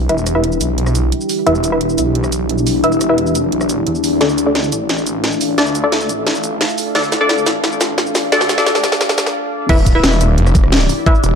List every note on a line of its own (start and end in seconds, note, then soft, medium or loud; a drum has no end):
0.00 9.65 D4 medium
0.00 4.17 E4 medium
0.00 4.17 G4 medium
0.09 0.59 E1 loud
0.09 0.17 E4 medium
0.09 0.17 B4 medium
0.09 0.17 E5 loud
0.09 closed hi-hat medium
0.18 cabasa soft
0.26 cross-stick soft
0.26 closed hi-hat medium
0.26 cabasa medium
0.35 1.44 E4 medium
0.35 1.44 B4 medium
0.35 1.44 E5 medium
0.44 closed hi-hat medium
0.52 cabasa soft
0.61 1.11 B1 loud
0.61 closed hi-hat loud
0.61 cabasa medium
0.78 closed hi-hat medium
0.86 cross-stick soft
0.86 cabasa soft
0.95 closed hi-hat medium
0.95 cabasa medium
1.12 closed hi-hat medium
1.21 cabasa soft
1.29 open hi-hat medium
1.29 cabasa medium
1.46 1.97 E1 loud
1.46 1.54 E4 medium
1.46 1.54 B4 medium
1.46 1.54 E5 loud
1.46 closed hi-hat medium
1.55 cabasa soft
1.64 closed hi-hat medium
1.64 cabasa medium
1.72 2.82 E4 medium
1.72 2.82 B4 medium
1.72 2.82 E5 medium
1.81 closed hi-hat medium
1.89 cabasa soft
1.98 2.48 B1 loud
1.98 closed hi-hat medium
1.98 cabasa medium
2.15 closed hi-hat medium
2.24 cross-stick soft
2.24 cabasa soft
2.32 closed hi-hat medium
2.32 cabasa medium
2.49 2.82 B1 medium
2.49 closed hi-hat medium
2.58 cabasa soft
2.67 open hi-hat medium
2.67 cabasa medium
2.84 3.34 E1 loud
2.84 2.91 E4 medium
2.84 2.91 B4 medium
2.84 2.91 E5 loud
2.84 closed hi-hat medium
2.92 cabasa soft
3.01 cross-stick soft
3.01 closed hi-hat medium
3.01 cabasa medium
3.09 4.19 E4 medium
3.09 4.19 B4 medium
3.09 4.19 E5 loud
3.18 closed hi-hat medium
3.27 cabasa soft
3.35 3.51 F1 loud
3.35 closed hi-hat medium
3.35 cabasa medium
3.52 3.85 B1 loud
3.52 closed hi-hat medium
3.61 cross-stick soft
3.61 cabasa soft
3.69 closed hi-hat medium
3.69 cabasa medium
3.86 4.19 E2 loud
3.86 closed hi-hat medium
3.95 cabasa soft
4.04 open hi-hat medium
4.04 cabasa medium
4.21 4.71 D2 loud
4.21 4.28 D4 medium
4.21 4.28 A4 medium
4.21 9.65 A4 medium
4.21 4.28 D5 loud
4.21 6.92 E5 medium
4.21 9.65 F5 medium
4.21 snare soft
4.21 closed hi-hat medium
4.29 cabasa soft
4.38 closed hi-hat medium
4.38 cabasa medium
4.46 5.56 D4 medium
4.46 5.56 A4 medium
4.46 5.56 D5 medium
4.55 snare medium
4.55 closed hi-hat medium
4.64 cabasa soft
4.72 5.22 A1 loud
4.72 closed hi-hat medium
4.72 cabasa medium
4.89 snare medium
4.89 closed hi-hat medium
4.98 cabasa soft
5.07 closed hi-hat medium
5.07 cabasa medium
5.24 5.57 A1 medium
5.24 snare medium
5.24 closed hi-hat medium
5.32 cabasa soft
5.41 open hi-hat medium
5.41 cabasa medium
5.58 6.08 D2 loud
5.58 5.66 D4 medium
5.58 5.66 A4 medium
5.58 5.66 D5 loud
5.58 snare medium
5.58 closed hi-hat medium
5.67 cabasa soft
5.75 closed hi-hat medium
5.75 cabasa medium
5.84 6.93 D4 medium
5.84 6.93 A4 medium
5.84 6.93 D5 loud
5.92 snare medium
5.92 closed hi-hat medium
6.01 cabasa soft
6.09 6.59 A1 loud
6.09 closed hi-hat medium
6.09 cabasa medium
6.27 snare medium
6.27 closed hi-hat medium
6.35 cabasa soft
6.44 closed hi-hat medium
6.44 cabasa medium
6.61 snare medium
6.61 closed hi-hat medium
6.69 cabasa soft
6.78 open hi-hat medium
6.78 cabasa medium
6.95 7.45 D2 loud
6.95 7.03 D4 medium
6.95 7.03 A4 medium
6.95 9.67 D5 medium
6.95 7.03 D5 medium
6.95 snare medium
6.95 closed hi-hat medium
7.04 cabasa soft
7.12 snare medium
7.12 closed hi-hat medium
7.12 cabasa medium
7.21 8.30 D4 medium
7.21 8.30 A4 medium
7.21 8.30 D5 loud
7.29 snare medium
7.29 closed hi-hat medium
7.38 cabasa soft
7.46 7.97 A1 loud
7.46 snare medium
7.46 closed hi-hat loud
7.46 cabasa medium
7.64 snare medium
7.64 closed hi-hat medium
7.72 cabasa soft
7.81 snare medium
7.81 closed hi-hat loud
7.81 cabasa medium
7.98 8.31 A1 loud
7.98 snare medium
7.98 closed hi-hat medium
8.06 cabasa soft
8.15 snare medium
8.15 open hi-hat medium
8.15 cabasa medium
8.32 8.82 D2 loud
8.32 8.40 D4 medium
8.32 8.40 A4 medium
8.32 8.40 D5 medium
8.32 snare medium
8.32 closed hi-hat medium
8.41 snare medium
8.41 cabasa soft
8.49 snare medium
8.49 closed hi-hat loud
8.49 cabasa medium
8.58 9.35 D4 medium
8.58 9.35 A4 medium
8.58 9.35 D5 loud
8.58 snare medium
8.66 snare loud
8.66 closed hi-hat medium
8.75 snare medium
8.75 cabasa soft
8.84 snare loud
8.84 closed hi-hat loud
8.84 cabasa medium
8.92 snare medium
9.01 snare loud
9.01 closed hi-hat medium
9.09 snare medium
9.09 cabasa soft
9.18 snare loud
9.18 closed hi-hat medium
9.18 cabasa medium
9.26 snare medium
9.69 10.02 E1 loud
9.69 11.35 E4 medium
9.69 9.77 E4 medium
9.69 11.35 G4 medium
9.69 9.77 B4 medium
9.69 11.35 D5 medium
9.69 9.77 E5 loud
9.69 kick loud
9.69 closed hi-hat medium
9.69 crash loud
9.78 cabasa soft
9.86 kick medium
9.86 closed hi-hat loud
9.86 cabasa medium
9.95 11.04 E4 medium
9.95 11.04 B4 medium
9.95 11.04 E5 loud
10.04 10.37 E1 loud
10.04 snare loud
10.04 closed hi-hat medium
10.12 cabasa soft
10.21 closed hi-hat loud
10.21 cabasa medium
10.38 10.88 F1 loud
10.38 closed hi-hat medium
10.46 cross-stick soft
10.46 cabasa soft
10.55 kick loud
10.55 closed hi-hat loud
10.55 cabasa medium
10.64 cross-stick medium
10.72 snare loud
10.72 closed hi-hat medium
10.81 cabasa soft
10.89 open hi-hat medium
10.89 cabasa medium
11.06 11.14 E4 medium
11.06 11.14 B4 medium
11.06 11.14 E5 loud
11.06 kick loud
11.06 closed hi-hat medium
11.15 cabasa soft
11.24 11.35 E1 loud
11.24 closed hi-hat medium
11.24 cabasa medium